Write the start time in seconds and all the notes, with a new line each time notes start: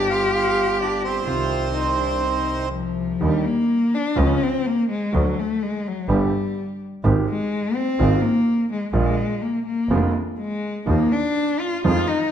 Already playing: G1 G2 D3 G3 B3 F4 G4
0.10 F4 F5
0.35 F4 F5
0.80 D4 D5
1.04 C4 C5
1.25 C2 C3 D#3 G3 C4 F4 G4
1.74 D#4
1.99 D4
2.23 D#4
2.71 F3
3.21 D#2 D3 D#3 G3 A#3 D#4
3.45 A#3
3.94 D4
4.16 C#2 C#3 F3 G#3 C#4 F4
4.43 C4
4.66 A#3
4.90 G#3
5.12 D2 D3 F#3 A3 F#4
5.40 A3
5.62 G#3
5.88 F#3
6.08 G1 G2 D3 G3 B3 G4
7.04 G#1 G#2 D#3 G#3 C4 G4
7.29 G#3
7.76 C4
7.99 G#1 G#2 D#3 G#3 C4 F4
8.21 A#3
8.72 G#3
8.92 A#1 A#2 D3 G#3 A#3 F4
9.42 A#3
9.66 A#3
9.89 F1 F2 D3 G#3 A#3 F4
10.38 G#3
10.86 D#2 D#3 F3 A#3 F4
11.12 D4
11.60 F4
11.84 F2 D#3 F3 G#3 C4 F4
12.08 D#4